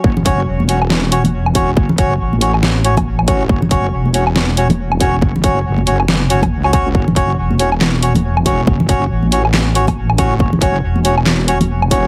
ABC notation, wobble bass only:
X:1
M:4/4
L:1/8
Q:"Swing 16ths" 1/4=139
K:F#m
V:1 name="Wobble bass" clef=bass
F,,,2 E,,,6 | F,,,2 A,,,6 | F,,,2 E,,,6 | F,,,2 F,,,4 C,,2 |
F,,,2 E,,,6 | F,,,2 A,,,6 | F,,,2 E,,,6 |]